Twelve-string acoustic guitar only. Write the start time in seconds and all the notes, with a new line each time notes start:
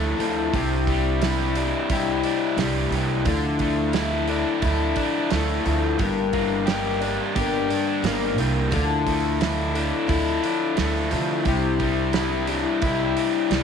Already playing: F3 D4 E4 A4
0.19 D4 E4 A4
0.54 C3 G3 D4 E4 G4
1.22 G3 D4 E4 G4
1.56 D4 E4 G4
1.90 C3 G3 D4 E4 G4
2.58 G3 D4 E4 G4
2.93 D4 E4 G4
3.26 D3 F3 D4 E4 A4
3.95 F3 D4 E4 A4
4.28 D4 E4 A4
4.64 D3 F3 D4 E4 A4
5.32 F3 D4 E4 A4
5.65 D4 E4 A4
5.98 G2 D3 G3 A#3 D4 A#4
6.68 G3 A#3 D4 A#4
7.02 G3 A#3 D4 A#4
7.36 G2 D3 G3 A#3 D4 A#4
8.02 G3 A#3 D4 A#4
8.38 G3 A#3 D4 A#4
8.71 D3 F3 D4 E4 A4
9.40 F3 D4 E4 A4
9.74 D4 E4 A4
10.07 D3 F3 D4 E4 A4
10.77 F3 D4 E4 A4
11.12 D4 E4 A4
11.46 C3 G3 D4 E4 G4
12.14 G3 D4 E4 G4
12.49 D4 E4 G4
12.84 C3 G3 D4 E4 G4
13.52 G3 D4 E4 G4